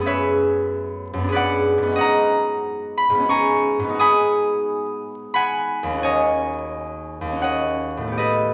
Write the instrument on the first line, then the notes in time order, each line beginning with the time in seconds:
harp
Already playing: F#2 B3 C#4
0.01 G#4
0.06 B4 C#5 E5
1.13 F#2
1.18 B3
1.24 D4
1.28 G#4 B4
1.34 D5 F#5
1.78 G#2
1.83 B3
1.87 C#4
1.92 F#4 D#5
1.98 F#5 A#5
2.97 B5
3.10 G#2
3.14 B3
3.19 C#4
3.25 F#4 C#6
3.30 G#5 A#5
3.79 G#2
3.84 B3
3.89 D#4
3.95 F#4
3.99 G#5 B5 D#6
5.34 F#5 G#5 B5
5.83 D#2
5.87 A#3
5.93 C#4
5.98 F#4
6.03 C#5 D#5 G#5
7.21 D#2
7.27 A#3
7.32 C#4
7.37 F#4
7.42 C#5 D#5 F#5
7.97 A2 A3
8.08 B3
8.12 G4
8.18 A4 B4 D#5